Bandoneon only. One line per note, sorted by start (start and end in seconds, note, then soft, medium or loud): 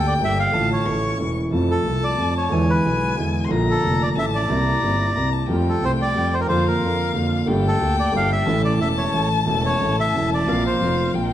0.07 0.14 D5 medium
0.24 0.38 E5 loud
0.39 0.69 F5 loud
0.73 1.18 C#5 medium
1.71 2.05 A4 medium
2.04 2.34 D5 loud
2.37 2.71 C#5 medium
2.70 3.15 B4 medium
3.71 4.03 A4 medium
4.03 4.09 D5 medium
4.19 4.26 E5 loud
4.35 5.30 D5 medium
5.69 5.85 A4 medium
5.85 5.92 C5 loud
6.02 6.35 D5 loud
6.34 6.40 C5 medium
6.41 6.47 A#4 medium
6.48 6.67 C5 medium
6.67 7.12 A#4 medium
7.67 7.96 A4 medium
8.00 8.14 D5 medium
8.16 8.30 F5 loud
8.32 8.62 E5 loud
8.65 8.79 D5 medium
8.81 8.88 E5 medium
8.98 9.29 C#5 medium
9.66 9.96 C#5 medium
10.00 10.30 E5 medium
10.34 10.64 D5 medium
10.66 11.12 C5 medium